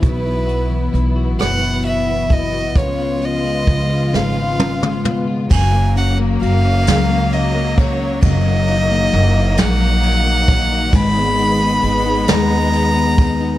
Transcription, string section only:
0.00 2.73 F#3 medium
0.00 5.47 B3 medium
0.00 2.72 E4 medium
2.75 5.48 C#3 medium
2.75 5.48 F3 medium
2.75 5.48 G#3 medium
2.75 5.48 F4 medium
5.50 8.20 C#3 medium
5.50 10.89 F#3 medium
5.50 8.20 A#3 medium
8.23 13.58 D#3 medium
8.23 10.91 A#3 medium
10.92 13.58 G#3 medium
10.92 13.58 B3 loud

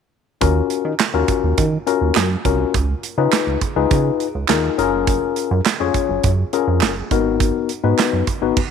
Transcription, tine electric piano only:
0.41 0.91 C#4 medium
0.41 0.91 F4 medium
0.41 0.91 F#4 medium
0.41 0.92 A#4 medium
1.14 1.64 C#4 medium
1.14 1.64 F4 medium
1.14 1.64 F#4 medium
1.14 1.64 A#4 medium
1.87 2.27 C#4 medium
1.87 2.27 F4 medium
1.87 2.27 F#4 medium
1.87 2.27 A#4 loud
2.45 2.74 C#4 medium
2.45 2.74 F4 medium
2.45 2.74 F#4 medium
2.45 2.75 A#4 medium
3.18 3.58 D#4 medium
3.18 3.58 F4 medium
3.18 3.58 G#4 medium
3.18 3.58 B4 loud
3.76 4.26 D#4 medium
3.76 4.26 F4 medium
3.76 4.26 G#4 medium
3.76 4.26 B4 loud
4.49 4.78 D#4 medium
4.49 4.77 F4 medium
4.49 4.77 G#4 medium
4.49 4.78 A#4 medium
4.78 5.60 C#4 medium
4.78 5.60 F4 medium
4.78 5.60 G#4 medium
4.78 5.60 A#4 medium
5.80 6.30 C#4 medium
5.80 6.30 F4 medium
5.80 6.30 G#4 medium
5.80 6.30 C#5 loud
6.53 6.93 C#4 medium
6.53 6.93 F4 medium
6.53 6.93 G#4 medium
6.53 6.93 A#4 medium
7.11 7.69 B3 medium
7.11 7.69 D#4 medium
7.11 7.70 F#4 medium
7.11 7.70 A#4 medium
7.83 8.24 B3 medium
7.83 8.24 D#4 medium
7.83 8.24 F#4 medium
7.83 8.24 B4 medium
8.42 8.57 B3 medium
8.42 8.57 D#4 medium
8.42 8.57 F#4 medium
8.42 8.57 B4 medium

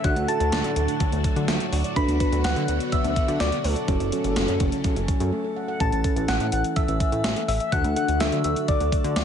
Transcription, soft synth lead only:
0.04 0.30 F#5 loud
0.28 1.72 A5 loud
1.96 2.41 B5 loud
2.44 2.89 F#5 loud
2.92 3.42 E5 loud
3.40 3.66 D5 loud
3.64 5.32 A4 loud
5.80 6.25 A5 loud
6.28 6.51 F#5 loud
6.52 6.63 F#5 loud
6.76 7.44 E5 loud
7.48 7.74 E5 medium
7.72 7.96 F#5 loud
7.96 8.19 F#5 loud
8.21 8.43 E5 loud
8.44 8.70 E5 loud
8.68 9.16 D5 loud
9.16 9.24 D5 loud

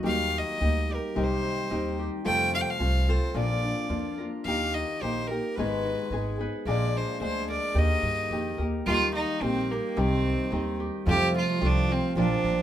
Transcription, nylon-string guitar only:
0.00 0.03 D#3 medium
0.00 0.60 D#3 medium
0.00 0.60 A#3 medium
0.00 0.60 D#4 medium
0.04 0.60 G4 medium
0.61 1.16 A#3 medium
0.61 1.15 D#4 medium
0.61 1.15 G4 medium
1.15 1.70 C3 medium
1.15 1.68 D#3 medium
1.15 1.69 C4 medium
1.15 1.70 D#4 medium
1.15 1.70 G4 medium
1.70 2.25 D#3 medium
1.70 2.25 C4 medium
1.70 2.25 D#4 medium
1.70 2.25 G4 medium
2.25 2.80 F2 medium
2.25 2.80 C3 medium
2.25 2.78 F3 medium
2.25 2.78 A3 medium
2.25 2.79 C4 medium
2.25 2.79 F4 medium
2.79 3.08 F3 soft
2.79 3.08 A3 medium
2.79 3.08 C4 medium
2.79 3.08 F4 medium
3.09 3.34 F3 soft
3.09 3.34 A3 soft
3.09 3.35 C4 soft
3.09 3.34 F4 soft
3.34 3.90 A#2 medium
3.34 3.88 F3 medium
3.34 3.88 A#3 medium
3.34 3.89 D4 medium
3.34 3.90 F4 medium
3.89 4.18 F3 medium
3.89 4.18 A#3 medium
3.89 4.19 D4 medium
3.89 4.18 F4 medium
4.20 4.46 A#3 soft
4.20 4.47 D4 soft
4.20 4.46 F4 soft
4.47 5.01 D#3 medium
4.47 5.02 A#3 medium
4.47 5.02 D#4 medium
4.47 5.03 G4 medium
5.02 5.30 D#3 medium
5.02 5.31 A#3 medium
5.02 5.30 D#4 medium
5.02 5.30 G4 medium
5.31 5.58 A#3 soft
5.31 5.58 D#4 soft
5.31 5.57 G4 soft
5.58 6.12 G#2 medium
5.58 6.12 D#3 medium
5.58 6.11 G#3 medium
5.58 6.11 B3 medium
5.58 6.11 D#4 medium
5.58 6.12 G#4 medium
6.12 6.39 G#3 medium
6.12 6.40 B3 medium
6.12 6.39 D#4 medium
6.12 6.38 G#4 medium
6.39 6.66 G#3 soft
6.39 6.67 B3 medium
6.39 6.67 D#4 medium
6.39 6.66 G#4 soft
6.67 7.21 A#2 medium
6.67 7.18 F3 medium
6.67 7.19 G#3 medium
6.67 7.20 D4 medium
6.67 7.20 G#4 medium
7.20 7.74 F3 medium
7.20 7.75 G#3 medium
7.20 7.75 D4 medium
7.20 7.75 G#4 medium
7.74 8.31 D#3 medium
7.74 8.30 A#3 medium
7.74 8.33 D#4 medium
7.74 8.32 G4 medium
8.31 8.59 D#3 medium
8.31 8.60 A#3 medium
8.31 8.58 D#4 medium
8.31 8.58 G4 medium
8.59 8.87 A#3 soft
8.59 8.86 D#4 soft
8.59 8.86 G4 soft
8.87 9.41 D#3 medium
8.87 9.41 A#3 medium
8.87 9.41 D#4 medium
8.87 9.43 G4 medium
9.42 9.95 D#3 medium
9.42 9.97 A#3 medium
9.42 9.96 D#4 medium
9.42 9.97 G4 medium
9.96 10.52 C3 medium
9.96 10.49 D#3 medium
9.96 10.51 C4 medium
9.96 10.51 D#4 medium
9.96 10.52 G4 medium
10.50 11.06 D#3 medium
10.50 11.06 C4 medium
10.50 11.07 D#4 medium
10.50 11.07 G4 medium
11.06 11.61 F2 medium
11.06 11.61 C3 medium
11.06 11.59 F3 medium
11.06 11.60 A3 medium
11.06 11.60 C4 medium
11.06 11.60 F4 medium
11.61 12.15 F3 medium
11.61 12.15 A3 medium
11.61 12.15 C4 medium
11.61 12.15 F4 medium
12.17 12.62 A#2 medium
12.17 12.62 F3 medium
12.17 12.62 A#3 medium
12.17 12.62 D4 medium
12.17 12.62 F4 medium

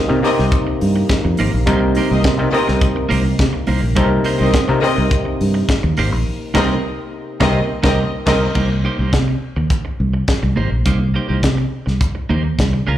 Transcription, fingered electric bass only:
0.10 0.20 C3 loud
0.39 0.49 C2 medium
0.82 1.02 G2 medium
1.25 1.35 F2 medium
1.40 1.50 G#1 medium
1.54 1.64 A#1 medium
1.67 1.99 C2 loud
2.11 2.21 C2 medium
2.25 2.45 C3 medium
2.69 2.89 C2 medium
3.11 3.32 C2 medium
3.39 3.50 C3 loud
3.69 3.79 C2 medium
3.83 3.93 A#1 medium
3.97 4.18 C2 loud
4.41 4.51 C2 medium
4.69 4.79 C3 medium
4.98 5.08 C2 medium
5.41 5.62 G2 medium
5.84 5.94 D#2 medium
5.98 6.12 G#1 medium
6.12 6.22 A#1 medium
6.55 6.75 C2 loud
7.41 7.61 C2 loud
7.84 8.04 C2 loud
8.27 8.47 C2 loud
8.56 8.87 C2 loud
8.99 9.09 C2 medium
9.13 9.34 C3 medium
9.56 9.67 D#2 medium
10.00 10.21 C2 medium
10.43 10.53 C2 medium
10.57 10.68 G#1 medium
10.72 10.82 A#1 medium
10.86 11.17 C2 medium
11.30 11.40 C2 medium
11.43 11.64 C3 medium
11.87 11.97 C2 medium
12.30 12.51 D#2 medium
12.59 12.80 C2 medium
12.88 12.98 C#2 medium

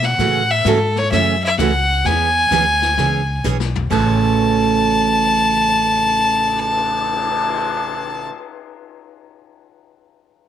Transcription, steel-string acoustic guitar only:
0.20 0.41 C#3 medium
0.20 0.41 E3 medium
0.20 0.41 A3 medium
0.20 0.42 C#4 medium
0.20 0.42 F#4 medium
0.66 0.77 C#3 medium
0.66 0.77 E3 medium
0.66 0.78 A3 medium
0.66 0.78 C#4 medium
0.66 0.78 F#4 medium
1.13 1.34 C#3 medium
1.13 1.34 E3 medium
1.13 1.35 A3 medium
1.13 1.35 C#4 medium
1.13 1.35 F#4 medium
1.60 1.71 C#3 medium
1.60 1.71 E3 medium
1.60 1.71 A3 medium
1.60 1.71 C#4 medium
1.60 1.71 F#4 medium
2.06 2.28 E3 medium
2.06 2.28 B3 medium
2.06 2.28 C#4 medium
2.06 2.28 G#4 medium
2.52 2.63 E3 medium
2.52 2.63 B3 medium
2.52 2.64 C#4 medium
2.52 2.64 G#4 medium
2.98 3.20 E3 medium
2.98 3.20 B3 medium
2.98 3.21 C#4 medium
2.98 3.21 G#4 medium
3.44 3.56 E3 medium
3.44 3.56 B3 medium
3.44 3.56 C#4 medium
3.44 3.57 G#4 medium
3.90 8.29 A2 medium
3.90 8.30 C#3 medium
3.90 8.31 E3 medium
3.90 8.31 A3 medium
3.90 8.32 C#4 medium
3.90 8.32 F#4 medium

